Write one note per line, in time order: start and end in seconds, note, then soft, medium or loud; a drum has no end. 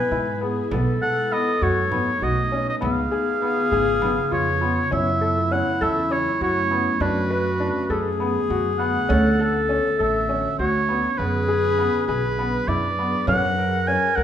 0.00 0.71 G#3 medium
0.00 0.67 E4 medium
0.00 0.42 B4 loud
0.00 0.70 B4 medium
0.00 0.37 G#5 medium
0.11 0.57 G#2 medium
0.11 0.29 E4 medium
0.41 0.59 B3 medium
0.41 0.75 G#4 medium
0.71 0.95 B1 medium
0.71 2.80 A3 medium
0.71 0.89 B3 medium
0.71 4.88 B3 medium
0.71 2.80 D#4 medium
0.71 2.55 A4 medium
0.71 frame drum medium
1.02 1.19 A4 medium
1.02 1.34 F#5 loud
1.32 1.49 B3 medium
1.32 1.64 D#5 medium
1.62 2.08 F#2 medium
1.62 1.79 F#4 medium
1.62 2.25 C#5 medium
1.92 2.09 B3 medium
1.92 frame drum medium
2.22 2.68 B1 medium
2.22 2.39 F#4 medium
2.22 2.67 D#5 medium
2.52 2.69 C#4 medium
2.69 2.75 D#5 medium
2.81 3.05 C#2 medium
2.81 4.90 C#3 medium
2.81 2.99 B3 medium
2.81 4.91 F4 medium
2.81 4.57 G#4 loud
2.81 4.29 F5 medium
2.81 frame drum medium
3.11 3.29 G#4 medium
3.42 3.59 B3 medium
3.72 4.17 G#1 medium
3.72 3.89 G#4 medium
4.02 4.19 B3 medium
4.02 frame drum medium
4.32 4.78 F2 medium
4.32 4.49 F4 medium
4.32 4.88 C#5 medium
4.61 4.79 B3 medium
4.61 4.89 F4 medium
4.90 5.60 F#2 medium
4.90 6.99 F#3 medium
4.90 9.07 A3 medium
4.90 5.09 C#4 medium
4.90 6.99 C#4 medium
4.90 6.96 E4 medium
4.90 5.54 E5 medium
5.21 5.39 A4 medium
5.51 5.69 C#4 medium
5.51 5.84 F#5 medium
5.81 6.27 E2 medium
5.81 5.99 A4 medium
5.81 6.13 E5 medium
6.11 6.28 C#4 medium
6.11 6.41 C#5 medium
6.41 6.87 F#2 medium
6.41 6.59 F#4 medium
6.41 7.03 C#5 medium
6.71 6.89 B3 medium
7.00 7.69 F#2 loud
7.00 11.15 D3 medium
7.00 9.08 B3 medium
7.00 7.18 D4 medium
7.00 7.92 F#4 medium
7.00 8.21 B4 medium
7.31 7.48 B4 medium
7.60 7.78 D4 medium
7.90 8.36 F#2 medium
7.90 9.12 G#4 loud
7.90 8.07 A4 medium
8.20 8.37 B3 medium
8.50 8.96 F#2 medium
8.50 8.68 F#4 medium
8.79 8.97 B3 medium
8.79 9.65 F#5 loud
9.09 9.78 D2 loud
9.09 9.27 C#4 medium
9.09 11.17 C#4 medium
9.09 11.17 F#4 medium
9.09 10.92 A4 loud
9.40 9.57 A4 medium
9.69 9.87 C#4 medium
9.99 10.45 A1 medium
9.99 10.17 A4 medium
9.99 10.55 E5 medium
10.29 10.47 C#4 medium
10.59 11.05 D2 medium
10.59 10.77 F#4 medium
10.59 11.20 C#5 medium
10.89 11.06 B3 medium
11.18 11.87 F#2 medium
11.18 14.23 F#3 medium
11.18 11.37 B3 medium
11.18 13.26 D4 medium
11.18 12.94 G#4 loud
11.18 13.26 G#4 medium
11.18 12.06 B4 medium
11.18 13.26 B4 medium
11.48 11.66 G#4 medium
11.79 11.96 B3 medium
12.07 12.54 B1 medium
12.07 12.26 G#4 medium
12.07 12.69 B4 medium
12.39 12.56 B3 medium
12.68 13.13 F#2 medium
12.68 12.86 E4 medium
12.68 13.28 D5 medium
12.99 13.16 B3 medium
13.27 13.96 F#2 medium
13.27 13.45 C#4 medium
13.27 14.23 E4 medium
13.27 14.23 A#4 loud
13.27 14.23 A#4 medium
13.27 13.89 F#5 loud
13.27 frame drum medium
13.58 13.75 A#4 medium
13.87 14.05 C#4 medium
13.87 14.17 G#5 medium
14.16 14.23 C#2 medium
14.16 14.23 A#4 medium
14.16 14.23 F#5 medium